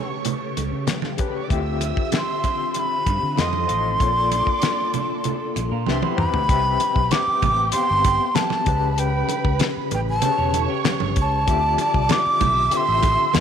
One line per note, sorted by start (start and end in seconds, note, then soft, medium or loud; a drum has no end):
0.00 1.17 C#3 medium
0.00 1.48 C#3 medium
0.00 1.48 A3 medium
0.00 1.19 C#4 medium
0.00 1.19 G4 medium
0.00 3.34 G4 medium
0.00 1.21 B4 medium
0.00 0.93 C#5 medium
0.00 0.93 C#6 loud
0.25 closed hi-hat medium
0.25 muted conga soft
0.25 low conga medium
0.57 0.71 C#2 medium
0.57 closed hi-hat medium
0.57 muted conga soft
0.72 0.86 C#3 medium
0.87 snare medium
0.87 closed hi-hat medium
0.87 high conga medium
1.02 1.12 F4 medium
1.02 1.12 F5 medium
1.02 snare soft
1.02 high conga medium
1.12 1.20 G4 medium
1.12 1.20 G5 medium
1.17 1.41 C#3 medium
1.17 1.42 C#4 medium
1.17 1.42 G4 medium
1.17 1.27 A4 medium
1.17 1.42 B4 medium
1.17 1.27 A5 medium
1.17 kick medium
1.17 closed hi-hat medium
1.28 1.35 B4 medium
1.28 1.35 B5 medium
1.36 1.43 C#5 medium
1.36 1.43 C#6 medium
1.42 1.51 D5 medium
1.42 1.50 D6 medium
1.48 1.92 D2 medium
1.48 2.39 D3 medium
1.48 3.36 D3 medium
1.48 2.40 C4 medium
1.48 3.98 C4 medium
1.48 1.57 E4 medium
1.48 3.36 F4 medium
1.48 2.41 G4 medium
1.48 3.04 E5 medium
1.48 3.36 E5 medium
1.48 2.41 E5 medium
1.48 kick loud
1.48 closed hi-hat medium
1.52 3.04 E6 medium
1.57 2.43 F4 medium
1.81 closed hi-hat medium
1.81 muted conga soft
1.97 kick medium
2.12 snare loud
2.12 closed hi-hat medium
2.12 high conga medium
2.17 2.80 C6 medium
2.44 kick medium
2.44 closed hi-hat medium
2.44 muted conga soft
2.74 closed hi-hat medium
2.74 muted conga soft
2.79 3.42 B5 loud
3.06 3.20 G2 medium
3.06 kick medium
3.06 closed hi-hat medium
3.06 muted conga soft
3.23 3.36 D3 medium
3.35 3.66 F2 medium
3.35 3.61 F3 medium
3.35 4.00 F3 medium
3.35 3.99 D#4 medium
3.35 3.62 F4 medium
3.35 3.62 A4 medium
3.35 3.99 A4 medium
3.35 3.68 D#5 medium
3.35 3.63 D#5 medium
3.35 3.68 D#6 medium
3.35 snare loud
3.35 closed hi-hat medium
3.35 high conga medium
3.41 5.88 C6 loud
3.53 high conga medium
3.67 3.97 A1 medium
3.67 3.90 F3 medium
3.67 3.91 F4 medium
3.67 3.91 A4 medium
3.67 closed hi-hat medium
3.71 3.92 D#5 medium
3.98 4.41 A#1 medium
3.98 4.89 A#3 medium
3.98 5.85 A#3 medium
3.98 5.85 D4 medium
3.98 4.89 F4 medium
3.98 5.85 A4 medium
3.98 4.90 A4 medium
3.98 4.07 C#5 medium
3.98 5.52 D5 medium
3.98 5.52 D6 medium
3.98 kick loud
3.98 closed hi-hat medium
4.08 4.94 D5 medium
4.32 closed hi-hat medium
4.32 muted conga soft
4.47 muted fingered electric bass stroke soft
4.47 kick medium
4.62 snare loud
4.62 closed hi-hat medium
4.62 high conga medium
4.94 closed hi-hat medium
4.94 muted conga soft
4.94 low conga medium
5.24 closed hi-hat medium
5.24 muted conga soft
5.24 low conga medium
5.56 5.70 A#1 medium
5.56 closed hi-hat medium
5.56 muted conga soft
5.72 5.85 A#2 medium
5.72 5.86 F4 soft
5.72 5.86 A#4 medium
5.86 6.01 C2 medium
5.86 6.49 B2 medium
5.86 6.49 C3 medium
5.86 6.49 G3 medium
5.86 6.12 C4 medium
5.86 6.01 D4 medium
5.86 6.49 E4 medium
5.86 6.01 G4 medium
5.86 6.12 G4 medium
5.86 6.13 B4 medium
5.86 6.17 C5 medium
5.86 6.13 E5 medium
5.86 6.17 C6 medium
5.86 snare medium
5.86 high conga medium
6.02 6.47 B3 soft
6.02 6.46 E4 medium
6.02 high tom medium
6.02 high conga medium
6.16 6.32 E2 medium
6.16 6.40 C4 medium
6.16 6.40 G4 medium
6.16 6.41 B4 medium
6.16 6.41 G5 medium
6.16 7.13 B5 loud
6.16 mid tom medium
6.34 6.48 D2 medium
6.34 floor tom medium
6.48 6.77 C2 medium
6.48 7.39 C4 medium
6.48 8.63 G4 medium
6.48 7.39 G4 medium
6.48 7.40 B4 medium
6.48 7.40 E5 medium
6.48 8.63 G5 medium
6.48 kick loud
6.48 closed hi-hat medium
6.80 closed hi-hat medium
6.80 muted conga soft
6.96 7.10 B1 medium
6.96 kick medium
7.11 7.71 D6 loud
7.11 snare loud
7.11 closed hi-hat medium
7.11 high conga medium
7.27 muted fingered electric bass stroke soft
7.42 7.70 A1 medium
7.42 kick medium
7.42 closed hi-hat medium
7.42 muted conga soft
7.42 low conga medium
7.72 8.64 B3 medium
7.72 8.63 C4 medium
7.72 8.64 G4 medium
7.72 8.37 C6 loud
7.72 muted fingered electric bass stroke soft
7.72 closed hi-hat loud
7.72 muted conga soft
7.76 7.81 F5 medium
7.83 8.68 G5 medium
7.91 8.17 G1 medium
8.04 kick medium
8.04 closed hi-hat medium
8.04 muted conga soft
8.35 9.00 A5 medium
8.35 snare loud
8.35 closed hi-hat medium
8.35 high conga medium
8.50 snare soft
8.50 high conga medium
8.64 9.22 C#2 medium
8.64 9.65 C#3 medium
8.64 9.66 C#4 medium
8.64 9.67 G4 medium
8.64 10.19 B4 medium
8.64 9.67 B4 medium
8.64 10.19 B5 medium
8.64 kick loud
8.64 closed hi-hat medium
8.98 9.61 G5 medium
8.98 closed hi-hat medium
9.29 closed hi-hat medium
9.29 muted conga soft
9.45 9.58 C#2 medium
9.45 kick medium
9.59 snare loud
9.59 closed hi-hat medium
9.59 high conga medium
9.77 muted fingered electric bass stroke soft
9.91 10.19 A1 medium
9.91 10.00 G5 medium
9.91 closed hi-hat medium
9.91 muted conga soft
10.09 10.67 A5 loud
10.21 11.12 C#3 medium
10.21 11.13 C#4 medium
10.21 11.13 G4 medium
10.21 11.14 B4 medium
10.21 11.45 C#5 medium
10.21 11.45 C#6 medium
10.21 closed hi-hat medium
10.21 low conga medium
10.38 10.66 E1 medium
10.38 10.53 G4 medium
10.38 10.53 C#5 medium
10.54 10.69 E4 medium
10.54 10.69 A4 medium
10.54 closed hi-hat medium
10.54 muted conga soft
10.69 11.44 C#4 medium
10.69 11.43 G4 medium
10.85 snare loud
10.85 closed hi-hat medium
10.85 high conga medium
11.00 11.15 G1 medium
11.00 high conga medium
11.16 11.44 C#2 medium
11.16 kick medium
11.16 closed hi-hat medium
11.21 12.13 A5 loud
11.47 11.75 D2 loud
11.47 12.37 D3 medium
11.47 12.37 C4 medium
11.47 12.38 F4 medium
11.47 12.38 G4 medium
11.47 12.39 D5 medium
11.47 12.38 E5 medium
11.47 12.39 D6 medium
11.47 kick loud
11.47 closed hi-hat medium
11.78 closed hi-hat medium
11.78 muted conga soft
11.94 12.08 C2 medium
11.94 kick medium
12.09 12.78 D6 loud
12.09 snare loud
12.09 closed hi-hat medium
12.09 high conga medium
12.26 muted fingered electric bass stroke soft
12.41 12.68 B1 medium
12.41 13.33 E5 medium
12.41 13.33 E6 medium
12.41 kick medium
12.41 closed hi-hat medium
12.41 muted conga soft
12.41 low conga medium
12.70 13.33 D3 medium
12.70 13.34 C4 medium
12.70 13.32 F4 medium
12.70 13.35 G4 medium
12.70 13.35 E5 medium
12.70 muted fingered electric bass stroke soft
12.70 closed hi-hat medium
12.70 muted conga soft
12.77 13.37 C6 loud
12.88 13.16 A1 medium
13.03 kick loud
13.03 closed hi-hat medium
13.03 muted conga soft
13.33 13.40 F2 medium
13.33 13.40 F3 medium
13.33 13.40 F4 medium
13.33 13.40 A4 medium
13.33 13.40 D#5 medium
13.33 13.40 F5 medium
13.33 13.40 F6 medium
13.33 snare loud
13.33 closed hi-hat loud
13.33 high conga medium